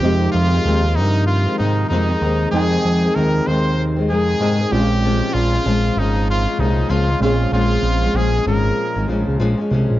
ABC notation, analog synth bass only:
X:1
M:4/4
L:1/16
Q:"Swing 16ths" 1/4=96
K:Bbdor
V:1 name="Analog synth bass" clef=bass
F,,2 F,,2 E,,2 G,,4 A,,2 F,,2 E,,2 | F,,2 F,,2 E,,2 E,,4 F,,2 A,,2 B,,,2- | B,,,2 B,,,2 B,,,2 A,,,4 C,,2 D,,2 B,,,2 | B,,,2 B,,,2 B,,,2 A,,,2 z A,,, B,,, D,, B,,, z C,, B,,, |]